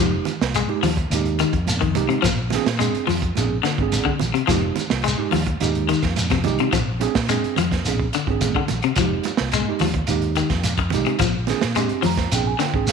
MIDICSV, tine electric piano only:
0, 0, Header, 1, 2, 480
1, 0, Start_track
1, 0, Tempo, 560748
1, 1912, Time_signature, 4, 2, 24, 8
1, 11060, End_track
2, 0, Start_track
2, 0, Title_t, "Tine electric piano"
2, 0, Program_c, 0, 4
2, 0, Note_on_c, 0, 56, 76
2, 0, Note_on_c, 0, 63, 72
2, 0, Note_on_c, 0, 67, 88
2, 257, Note_off_c, 0, 56, 0
2, 258, Note_off_c, 0, 63, 0
2, 262, Note_off_c, 0, 67, 0
2, 582, Note_on_c, 0, 56, 73
2, 590, Note_on_c, 0, 63, 69
2, 596, Note_on_c, 0, 67, 86
2, 748, Note_off_c, 0, 56, 0
2, 752, Note_off_c, 0, 63, 0
2, 755, Note_off_c, 0, 67, 0
2, 958, Note_on_c, 0, 56, 85
2, 975, Note_on_c, 0, 63, 75
2, 980, Note_on_c, 0, 67, 90
2, 1280, Note_off_c, 0, 56, 0
2, 1289, Note_off_c, 0, 63, 0
2, 1291, Note_off_c, 0, 67, 0
2, 1674, Note_on_c, 0, 63, 83
2, 1676, Note_on_c, 0, 56, 82
2, 1686, Note_on_c, 0, 67, 93
2, 1890, Note_off_c, 0, 63, 0
2, 1891, Note_off_c, 0, 56, 0
2, 1896, Note_off_c, 0, 67, 0
2, 2166, Note_on_c, 0, 60, 94
2, 2169, Note_on_c, 0, 62, 85
2, 2183, Note_on_c, 0, 68, 108
2, 2269, Note_off_c, 0, 60, 0
2, 2270, Note_off_c, 0, 62, 0
2, 2277, Note_off_c, 0, 68, 0
2, 2393, Note_on_c, 0, 60, 90
2, 2399, Note_on_c, 0, 62, 77
2, 2408, Note_on_c, 0, 68, 99
2, 2611, Note_off_c, 0, 60, 0
2, 2614, Note_off_c, 0, 62, 0
2, 2618, Note_off_c, 0, 68, 0
2, 2886, Note_on_c, 0, 60, 73
2, 2892, Note_on_c, 0, 62, 69
2, 2900, Note_on_c, 0, 68, 87
2, 3044, Note_off_c, 0, 60, 0
2, 3046, Note_off_c, 0, 62, 0
2, 3051, Note_off_c, 0, 68, 0
2, 3257, Note_on_c, 0, 60, 79
2, 3257, Note_on_c, 0, 62, 75
2, 3272, Note_on_c, 0, 68, 95
2, 3518, Note_off_c, 0, 60, 0
2, 3518, Note_off_c, 0, 62, 0
2, 3525, Note_off_c, 0, 68, 0
2, 3835, Note_on_c, 0, 56, 81
2, 3852, Note_on_c, 0, 63, 73
2, 3860, Note_on_c, 0, 67, 89
2, 4107, Note_off_c, 0, 56, 0
2, 4115, Note_off_c, 0, 63, 0
2, 4120, Note_off_c, 0, 67, 0
2, 4432, Note_on_c, 0, 56, 76
2, 4435, Note_on_c, 0, 63, 72
2, 4446, Note_on_c, 0, 67, 88
2, 4597, Note_off_c, 0, 56, 0
2, 4599, Note_off_c, 0, 63, 0
2, 4604, Note_off_c, 0, 67, 0
2, 4800, Note_on_c, 0, 56, 86
2, 4803, Note_on_c, 0, 63, 82
2, 4813, Note_on_c, 0, 67, 90
2, 5124, Note_off_c, 0, 56, 0
2, 5126, Note_off_c, 0, 63, 0
2, 5131, Note_off_c, 0, 67, 0
2, 5515, Note_on_c, 0, 56, 90
2, 5525, Note_on_c, 0, 63, 81
2, 5535, Note_on_c, 0, 67, 100
2, 5733, Note_off_c, 0, 56, 0
2, 5738, Note_off_c, 0, 63, 0
2, 5744, Note_off_c, 0, 67, 0
2, 5991, Note_on_c, 0, 60, 89
2, 5996, Note_on_c, 0, 62, 87
2, 6009, Note_on_c, 0, 68, 100
2, 6104, Note_off_c, 0, 60, 0
2, 6106, Note_off_c, 0, 62, 0
2, 6113, Note_off_c, 0, 68, 0
2, 6240, Note_on_c, 0, 60, 95
2, 6249, Note_on_c, 0, 62, 84
2, 6256, Note_on_c, 0, 68, 98
2, 6456, Note_off_c, 0, 60, 0
2, 6460, Note_off_c, 0, 62, 0
2, 6464, Note_off_c, 0, 68, 0
2, 6729, Note_on_c, 0, 60, 73
2, 6737, Note_on_c, 0, 62, 68
2, 6748, Note_on_c, 0, 68, 82
2, 6887, Note_off_c, 0, 60, 0
2, 6890, Note_off_c, 0, 62, 0
2, 6896, Note_off_c, 0, 68, 0
2, 7093, Note_on_c, 0, 60, 79
2, 7106, Note_on_c, 0, 62, 73
2, 7108, Note_on_c, 0, 68, 89
2, 7357, Note_off_c, 0, 60, 0
2, 7363, Note_off_c, 0, 62, 0
2, 7364, Note_off_c, 0, 68, 0
2, 7698, Note_on_c, 0, 56, 76
2, 7700, Note_on_c, 0, 63, 67
2, 7714, Note_on_c, 0, 67, 86
2, 7958, Note_off_c, 0, 56, 0
2, 7960, Note_off_c, 0, 63, 0
2, 7967, Note_off_c, 0, 67, 0
2, 8282, Note_on_c, 0, 56, 76
2, 8291, Note_on_c, 0, 63, 69
2, 8299, Note_on_c, 0, 67, 80
2, 8442, Note_off_c, 0, 56, 0
2, 8446, Note_off_c, 0, 63, 0
2, 8450, Note_off_c, 0, 67, 0
2, 8630, Note_on_c, 0, 56, 82
2, 8634, Note_on_c, 0, 63, 78
2, 8649, Note_on_c, 0, 67, 91
2, 8958, Note_off_c, 0, 56, 0
2, 8960, Note_off_c, 0, 63, 0
2, 8967, Note_off_c, 0, 67, 0
2, 9359, Note_on_c, 0, 56, 89
2, 9363, Note_on_c, 0, 63, 79
2, 9371, Note_on_c, 0, 67, 96
2, 9573, Note_off_c, 0, 56, 0
2, 9575, Note_off_c, 0, 63, 0
2, 9579, Note_off_c, 0, 67, 0
2, 9836, Note_on_c, 0, 60, 86
2, 9841, Note_on_c, 0, 62, 84
2, 9845, Note_on_c, 0, 68, 105
2, 9943, Note_off_c, 0, 60, 0
2, 9946, Note_off_c, 0, 62, 0
2, 9948, Note_off_c, 0, 68, 0
2, 10070, Note_on_c, 0, 60, 91
2, 10083, Note_on_c, 0, 62, 81
2, 10085, Note_on_c, 0, 67, 93
2, 10287, Note_off_c, 0, 60, 0
2, 10294, Note_off_c, 0, 62, 0
2, 10295, Note_off_c, 0, 67, 0
2, 10322, Note_on_c, 0, 82, 69
2, 10540, Note_off_c, 0, 82, 0
2, 10555, Note_on_c, 0, 60, 73
2, 10565, Note_on_c, 0, 79, 68
2, 10571, Note_on_c, 0, 62, 69
2, 10578, Note_on_c, 0, 68, 80
2, 10670, Note_off_c, 0, 79, 0
2, 10676, Note_on_c, 0, 80, 69
2, 10715, Note_off_c, 0, 60, 0
2, 10724, Note_off_c, 0, 62, 0
2, 10727, Note_off_c, 0, 68, 0
2, 10784, Note_off_c, 0, 80, 0
2, 10791, Note_on_c, 0, 79, 65
2, 10910, Note_on_c, 0, 62, 76
2, 10913, Note_on_c, 0, 60, 87
2, 10919, Note_on_c, 0, 68, 89
2, 11013, Note_off_c, 0, 79, 0
2, 11060, Note_off_c, 0, 60, 0
2, 11060, Note_off_c, 0, 62, 0
2, 11060, Note_off_c, 0, 68, 0
2, 11060, End_track
0, 0, End_of_file